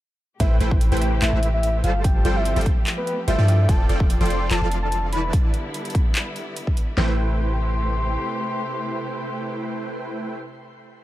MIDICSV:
0, 0, Header, 1, 6, 480
1, 0, Start_track
1, 0, Key_signature, 0, "minor"
1, 0, Tempo, 410959
1, 467, Time_signature, 4, 2, 24, 8
1, 12892, End_track
2, 0, Start_track
2, 0, Title_t, "Soft synth lead"
2, 0, Program_c, 0, 80
2, 467, Note_on_c, 0, 76, 99
2, 657, Note_off_c, 0, 76, 0
2, 1074, Note_on_c, 0, 79, 97
2, 1352, Note_off_c, 0, 79, 0
2, 1426, Note_on_c, 0, 76, 96
2, 1709, Note_off_c, 0, 76, 0
2, 1794, Note_on_c, 0, 76, 101
2, 2072, Note_off_c, 0, 76, 0
2, 2146, Note_on_c, 0, 77, 89
2, 2336, Note_off_c, 0, 77, 0
2, 2386, Note_on_c, 0, 79, 96
2, 2753, Note_on_c, 0, 76, 102
2, 2771, Note_off_c, 0, 79, 0
2, 3032, Note_off_c, 0, 76, 0
2, 3473, Note_on_c, 0, 71, 95
2, 3752, Note_off_c, 0, 71, 0
2, 3827, Note_on_c, 0, 76, 97
2, 4306, Note_on_c, 0, 81, 103
2, 4324, Note_off_c, 0, 76, 0
2, 4497, Note_off_c, 0, 81, 0
2, 4913, Note_on_c, 0, 84, 99
2, 5267, Note_on_c, 0, 81, 97
2, 5284, Note_off_c, 0, 84, 0
2, 5550, Note_off_c, 0, 81, 0
2, 5633, Note_on_c, 0, 81, 99
2, 5912, Note_off_c, 0, 81, 0
2, 5986, Note_on_c, 0, 83, 92
2, 6176, Note_off_c, 0, 83, 0
2, 8148, Note_on_c, 0, 84, 109
2, 12118, Note_off_c, 0, 84, 0
2, 12892, End_track
3, 0, Start_track
3, 0, Title_t, "Supersaw synth"
3, 0, Program_c, 1, 81
3, 468, Note_on_c, 1, 57, 93
3, 468, Note_on_c, 1, 64, 87
3, 468, Note_on_c, 1, 71, 87
3, 468, Note_on_c, 1, 72, 85
3, 468, Note_on_c, 1, 79, 105
3, 680, Note_off_c, 1, 57, 0
3, 680, Note_off_c, 1, 64, 0
3, 680, Note_off_c, 1, 71, 0
3, 680, Note_off_c, 1, 72, 0
3, 680, Note_off_c, 1, 79, 0
3, 708, Note_on_c, 1, 57, 83
3, 708, Note_on_c, 1, 64, 76
3, 708, Note_on_c, 1, 71, 74
3, 708, Note_on_c, 1, 72, 75
3, 708, Note_on_c, 1, 79, 91
3, 1044, Note_off_c, 1, 57, 0
3, 1044, Note_off_c, 1, 64, 0
3, 1044, Note_off_c, 1, 71, 0
3, 1044, Note_off_c, 1, 72, 0
3, 1044, Note_off_c, 1, 79, 0
3, 1074, Note_on_c, 1, 79, 99
3, 1075, Note_on_c, 1, 57, 90
3, 1075, Note_on_c, 1, 64, 83
3, 1075, Note_on_c, 1, 71, 84
3, 1075, Note_on_c, 1, 72, 83
3, 1400, Note_off_c, 1, 57, 0
3, 1400, Note_off_c, 1, 64, 0
3, 1400, Note_off_c, 1, 72, 0
3, 1400, Note_off_c, 1, 79, 0
3, 1401, Note_off_c, 1, 71, 0
3, 1428, Note_on_c, 1, 57, 85
3, 1428, Note_on_c, 1, 64, 81
3, 1428, Note_on_c, 1, 71, 78
3, 1428, Note_on_c, 1, 72, 76
3, 1428, Note_on_c, 1, 81, 92
3, 1524, Note_off_c, 1, 57, 0
3, 1524, Note_off_c, 1, 64, 0
3, 1524, Note_off_c, 1, 71, 0
3, 1524, Note_off_c, 1, 72, 0
3, 1524, Note_off_c, 1, 81, 0
3, 1554, Note_on_c, 1, 57, 77
3, 1554, Note_on_c, 1, 64, 70
3, 1554, Note_on_c, 1, 71, 69
3, 1554, Note_on_c, 1, 72, 71
3, 1554, Note_on_c, 1, 76, 82
3, 2120, Note_off_c, 1, 57, 0
3, 2120, Note_off_c, 1, 64, 0
3, 2120, Note_off_c, 1, 71, 0
3, 2120, Note_off_c, 1, 72, 0
3, 2120, Note_off_c, 1, 76, 0
3, 2147, Note_on_c, 1, 69, 80
3, 2148, Note_on_c, 1, 55, 86
3, 2148, Note_on_c, 1, 65, 80
3, 2148, Note_on_c, 1, 72, 81
3, 2148, Note_on_c, 1, 81, 97
3, 2600, Note_off_c, 1, 55, 0
3, 2600, Note_off_c, 1, 65, 0
3, 2600, Note_off_c, 1, 69, 0
3, 2600, Note_off_c, 1, 72, 0
3, 2600, Note_off_c, 1, 81, 0
3, 2628, Note_on_c, 1, 55, 103
3, 2628, Note_on_c, 1, 65, 92
3, 2628, Note_on_c, 1, 69, 91
3, 2628, Note_on_c, 1, 72, 94
3, 2628, Note_on_c, 1, 79, 109
3, 2964, Note_off_c, 1, 55, 0
3, 2964, Note_off_c, 1, 65, 0
3, 2964, Note_off_c, 1, 69, 0
3, 2964, Note_off_c, 1, 72, 0
3, 2964, Note_off_c, 1, 79, 0
3, 2994, Note_on_c, 1, 65, 86
3, 2994, Note_on_c, 1, 72, 85
3, 2995, Note_on_c, 1, 55, 91
3, 2995, Note_on_c, 1, 69, 85
3, 2995, Note_on_c, 1, 79, 105
3, 3165, Note_off_c, 1, 55, 0
3, 3165, Note_off_c, 1, 65, 0
3, 3165, Note_off_c, 1, 69, 0
3, 3165, Note_off_c, 1, 72, 0
3, 3165, Note_off_c, 1, 79, 0
3, 3828, Note_on_c, 1, 55, 86
3, 3828, Note_on_c, 1, 65, 79
3, 3828, Note_on_c, 1, 69, 80
3, 3828, Note_on_c, 1, 72, 80
3, 3828, Note_on_c, 1, 79, 97
3, 3924, Note_off_c, 1, 55, 0
3, 3924, Note_off_c, 1, 65, 0
3, 3924, Note_off_c, 1, 69, 0
3, 3924, Note_off_c, 1, 72, 0
3, 3924, Note_off_c, 1, 79, 0
3, 3954, Note_on_c, 1, 69, 80
3, 3955, Note_on_c, 1, 53, 88
3, 3955, Note_on_c, 1, 65, 80
3, 3955, Note_on_c, 1, 74, 78
3, 3955, Note_on_c, 1, 79, 96
3, 4280, Note_off_c, 1, 53, 0
3, 4280, Note_off_c, 1, 65, 0
3, 4280, Note_off_c, 1, 69, 0
3, 4280, Note_off_c, 1, 74, 0
3, 4280, Note_off_c, 1, 79, 0
3, 4308, Note_on_c, 1, 53, 96
3, 4308, Note_on_c, 1, 65, 86
3, 4308, Note_on_c, 1, 69, 88
3, 4308, Note_on_c, 1, 74, 88
3, 4308, Note_on_c, 1, 79, 107
3, 4521, Note_off_c, 1, 53, 0
3, 4521, Note_off_c, 1, 65, 0
3, 4521, Note_off_c, 1, 69, 0
3, 4521, Note_off_c, 1, 74, 0
3, 4521, Note_off_c, 1, 79, 0
3, 4548, Note_on_c, 1, 53, 84
3, 4548, Note_on_c, 1, 69, 77
3, 4548, Note_on_c, 1, 74, 76
3, 4548, Note_on_c, 1, 79, 93
3, 4549, Note_on_c, 1, 65, 75
3, 4884, Note_off_c, 1, 53, 0
3, 4884, Note_off_c, 1, 65, 0
3, 4884, Note_off_c, 1, 69, 0
3, 4884, Note_off_c, 1, 74, 0
3, 4884, Note_off_c, 1, 79, 0
3, 4915, Note_on_c, 1, 53, 91
3, 4915, Note_on_c, 1, 65, 85
3, 4915, Note_on_c, 1, 74, 87
3, 4915, Note_on_c, 1, 79, 100
3, 4916, Note_on_c, 1, 69, 84
3, 5241, Note_off_c, 1, 53, 0
3, 5241, Note_off_c, 1, 65, 0
3, 5241, Note_off_c, 1, 69, 0
3, 5241, Note_off_c, 1, 74, 0
3, 5241, Note_off_c, 1, 79, 0
3, 5268, Note_on_c, 1, 53, 87
3, 5268, Note_on_c, 1, 65, 80
3, 5268, Note_on_c, 1, 74, 80
3, 5269, Note_on_c, 1, 69, 79
3, 5269, Note_on_c, 1, 81, 96
3, 5364, Note_off_c, 1, 53, 0
3, 5364, Note_off_c, 1, 65, 0
3, 5364, Note_off_c, 1, 69, 0
3, 5364, Note_off_c, 1, 74, 0
3, 5364, Note_off_c, 1, 81, 0
3, 5394, Note_on_c, 1, 53, 76
3, 5394, Note_on_c, 1, 65, 69
3, 5394, Note_on_c, 1, 69, 70
3, 5394, Note_on_c, 1, 74, 68
3, 5394, Note_on_c, 1, 77, 84
3, 5960, Note_off_c, 1, 53, 0
3, 5960, Note_off_c, 1, 65, 0
3, 5960, Note_off_c, 1, 69, 0
3, 5960, Note_off_c, 1, 74, 0
3, 5960, Note_off_c, 1, 77, 0
3, 5988, Note_on_c, 1, 52, 86
3, 5988, Note_on_c, 1, 64, 81
3, 5988, Note_on_c, 1, 71, 81
3, 5988, Note_on_c, 1, 74, 78
3, 5988, Note_on_c, 1, 81, 94
3, 6440, Note_off_c, 1, 52, 0
3, 6440, Note_off_c, 1, 64, 0
3, 6440, Note_off_c, 1, 71, 0
3, 6440, Note_off_c, 1, 74, 0
3, 6440, Note_off_c, 1, 81, 0
3, 8148, Note_on_c, 1, 72, 80
3, 8148, Note_on_c, 1, 79, 95
3, 8149, Note_on_c, 1, 57, 85
3, 8149, Note_on_c, 1, 64, 79
3, 8149, Note_on_c, 1, 71, 80
3, 12119, Note_off_c, 1, 57, 0
3, 12119, Note_off_c, 1, 64, 0
3, 12119, Note_off_c, 1, 71, 0
3, 12119, Note_off_c, 1, 72, 0
3, 12119, Note_off_c, 1, 79, 0
3, 12892, End_track
4, 0, Start_track
4, 0, Title_t, "String section"
4, 0, Program_c, 2, 48
4, 466, Note_on_c, 2, 48, 79
4, 467, Note_on_c, 2, 57, 72
4, 467, Note_on_c, 2, 67, 86
4, 2368, Note_off_c, 2, 48, 0
4, 2368, Note_off_c, 2, 67, 0
4, 2387, Note_on_c, 2, 53, 78
4, 2388, Note_on_c, 2, 60, 70
4, 2388, Note_on_c, 2, 67, 87
4, 4050, Note_off_c, 2, 53, 0
4, 4051, Note_off_c, 2, 60, 0
4, 4051, Note_off_c, 2, 67, 0
4, 4068, Note_on_c, 2, 60, 72
4, 4069, Note_on_c, 2, 50, 80
4, 4069, Note_on_c, 2, 65, 84
4, 5940, Note_off_c, 2, 57, 0
4, 5969, Note_off_c, 2, 60, 0
4, 5969, Note_off_c, 2, 65, 0
4, 5988, Note_on_c, 2, 55, 74
4, 5988, Note_on_c, 2, 59, 74
4, 5988, Note_on_c, 2, 64, 88
4, 8107, Note_off_c, 2, 50, 0
4, 8126, Note_off_c, 2, 55, 0
4, 8126, Note_off_c, 2, 59, 0
4, 8126, Note_off_c, 2, 64, 0
4, 8147, Note_on_c, 2, 57, 72
4, 8147, Note_on_c, 2, 67, 86
4, 8148, Note_on_c, 2, 48, 80
4, 12117, Note_off_c, 2, 67, 0
4, 12118, Note_off_c, 2, 48, 0
4, 12118, Note_off_c, 2, 57, 0
4, 12892, End_track
5, 0, Start_track
5, 0, Title_t, "808-style bass"
5, 0, Program_c, 3, 38
5, 468, Note_on_c, 3, 33, 97
5, 685, Note_off_c, 3, 33, 0
5, 707, Note_on_c, 3, 33, 97
5, 1048, Note_off_c, 3, 33, 0
5, 1072, Note_on_c, 3, 33, 97
5, 1404, Note_off_c, 3, 33, 0
5, 1427, Note_on_c, 3, 33, 100
5, 1528, Note_off_c, 3, 33, 0
5, 1553, Note_on_c, 3, 33, 98
5, 2124, Note_off_c, 3, 33, 0
5, 2147, Note_on_c, 3, 31, 98
5, 2605, Note_off_c, 3, 31, 0
5, 2627, Note_on_c, 3, 31, 97
5, 2968, Note_off_c, 3, 31, 0
5, 2993, Note_on_c, 3, 31, 102
5, 3139, Note_off_c, 3, 31, 0
5, 3828, Note_on_c, 3, 31, 97
5, 3929, Note_off_c, 3, 31, 0
5, 3953, Note_on_c, 3, 43, 98
5, 4284, Note_off_c, 3, 43, 0
5, 4307, Note_on_c, 3, 29, 98
5, 4525, Note_off_c, 3, 29, 0
5, 4547, Note_on_c, 3, 29, 100
5, 4888, Note_off_c, 3, 29, 0
5, 4913, Note_on_c, 3, 29, 101
5, 5244, Note_off_c, 3, 29, 0
5, 5267, Note_on_c, 3, 29, 98
5, 5368, Note_off_c, 3, 29, 0
5, 5393, Note_on_c, 3, 29, 96
5, 5986, Note_on_c, 3, 28, 99
5, 6003, Note_off_c, 3, 29, 0
5, 6204, Note_off_c, 3, 28, 0
5, 8147, Note_on_c, 3, 33, 96
5, 9540, Note_off_c, 3, 33, 0
5, 12892, End_track
6, 0, Start_track
6, 0, Title_t, "Drums"
6, 467, Note_on_c, 9, 36, 118
6, 468, Note_on_c, 9, 42, 83
6, 584, Note_off_c, 9, 36, 0
6, 584, Note_off_c, 9, 42, 0
6, 707, Note_on_c, 9, 42, 69
6, 824, Note_off_c, 9, 42, 0
6, 834, Note_on_c, 9, 36, 105
6, 947, Note_on_c, 9, 42, 83
6, 951, Note_off_c, 9, 36, 0
6, 1064, Note_off_c, 9, 42, 0
6, 1073, Note_on_c, 9, 42, 51
6, 1130, Note_off_c, 9, 42, 0
6, 1130, Note_on_c, 9, 42, 65
6, 1187, Note_off_c, 9, 42, 0
6, 1187, Note_on_c, 9, 42, 68
6, 1303, Note_off_c, 9, 42, 0
6, 1427, Note_on_c, 9, 39, 122
6, 1427, Note_on_c, 9, 42, 83
6, 1544, Note_off_c, 9, 39, 0
6, 1544, Note_off_c, 9, 42, 0
6, 1667, Note_on_c, 9, 42, 66
6, 1784, Note_off_c, 9, 42, 0
6, 1907, Note_on_c, 9, 42, 83
6, 2024, Note_off_c, 9, 42, 0
6, 2148, Note_on_c, 9, 42, 68
6, 2264, Note_off_c, 9, 42, 0
6, 2387, Note_on_c, 9, 42, 82
6, 2388, Note_on_c, 9, 36, 122
6, 2504, Note_off_c, 9, 36, 0
6, 2504, Note_off_c, 9, 42, 0
6, 2627, Note_on_c, 9, 42, 66
6, 2744, Note_off_c, 9, 42, 0
6, 2867, Note_on_c, 9, 42, 80
6, 2984, Note_off_c, 9, 42, 0
6, 2994, Note_on_c, 9, 42, 49
6, 3050, Note_off_c, 9, 42, 0
6, 3050, Note_on_c, 9, 42, 64
6, 3108, Note_off_c, 9, 42, 0
6, 3108, Note_on_c, 9, 36, 107
6, 3108, Note_on_c, 9, 42, 67
6, 3224, Note_off_c, 9, 36, 0
6, 3224, Note_off_c, 9, 42, 0
6, 3348, Note_on_c, 9, 39, 127
6, 3348, Note_on_c, 9, 42, 80
6, 3465, Note_off_c, 9, 39, 0
6, 3465, Note_off_c, 9, 42, 0
6, 3588, Note_on_c, 9, 42, 64
6, 3705, Note_off_c, 9, 42, 0
6, 3828, Note_on_c, 9, 42, 83
6, 3945, Note_off_c, 9, 42, 0
6, 4069, Note_on_c, 9, 42, 67
6, 4186, Note_off_c, 9, 42, 0
6, 4308, Note_on_c, 9, 36, 124
6, 4309, Note_on_c, 9, 42, 80
6, 4424, Note_off_c, 9, 36, 0
6, 4426, Note_off_c, 9, 42, 0
6, 4548, Note_on_c, 9, 42, 64
6, 4665, Note_off_c, 9, 42, 0
6, 4674, Note_on_c, 9, 36, 115
6, 4788, Note_on_c, 9, 42, 80
6, 4791, Note_off_c, 9, 36, 0
6, 4905, Note_off_c, 9, 42, 0
6, 4914, Note_on_c, 9, 42, 49
6, 4971, Note_off_c, 9, 42, 0
6, 4971, Note_on_c, 9, 42, 64
6, 5027, Note_off_c, 9, 42, 0
6, 5027, Note_on_c, 9, 42, 66
6, 5144, Note_off_c, 9, 42, 0
6, 5267, Note_on_c, 9, 39, 127
6, 5267, Note_on_c, 9, 42, 78
6, 5384, Note_off_c, 9, 39, 0
6, 5384, Note_off_c, 9, 42, 0
6, 5507, Note_on_c, 9, 42, 65
6, 5624, Note_off_c, 9, 42, 0
6, 5747, Note_on_c, 9, 42, 77
6, 5864, Note_off_c, 9, 42, 0
6, 5987, Note_on_c, 9, 42, 65
6, 6104, Note_off_c, 9, 42, 0
6, 6227, Note_on_c, 9, 36, 125
6, 6228, Note_on_c, 9, 42, 78
6, 6344, Note_off_c, 9, 36, 0
6, 6344, Note_off_c, 9, 42, 0
6, 6468, Note_on_c, 9, 42, 64
6, 6585, Note_off_c, 9, 42, 0
6, 6708, Note_on_c, 9, 42, 76
6, 6825, Note_off_c, 9, 42, 0
6, 6835, Note_on_c, 9, 42, 46
6, 6892, Note_off_c, 9, 42, 0
6, 6892, Note_on_c, 9, 42, 62
6, 6948, Note_on_c, 9, 36, 112
6, 6949, Note_off_c, 9, 42, 0
6, 6949, Note_on_c, 9, 42, 63
6, 7064, Note_off_c, 9, 36, 0
6, 7065, Note_off_c, 9, 42, 0
6, 7188, Note_on_c, 9, 39, 125
6, 7188, Note_on_c, 9, 42, 77
6, 7305, Note_off_c, 9, 39, 0
6, 7305, Note_off_c, 9, 42, 0
6, 7428, Note_on_c, 9, 42, 61
6, 7545, Note_off_c, 9, 42, 0
6, 7668, Note_on_c, 9, 42, 77
6, 7785, Note_off_c, 9, 42, 0
6, 7794, Note_on_c, 9, 36, 61
6, 7908, Note_on_c, 9, 42, 63
6, 7911, Note_off_c, 9, 36, 0
6, 8025, Note_off_c, 9, 42, 0
6, 8147, Note_on_c, 9, 38, 102
6, 8147, Note_on_c, 9, 39, 88
6, 8264, Note_off_c, 9, 38, 0
6, 8264, Note_off_c, 9, 39, 0
6, 12892, End_track
0, 0, End_of_file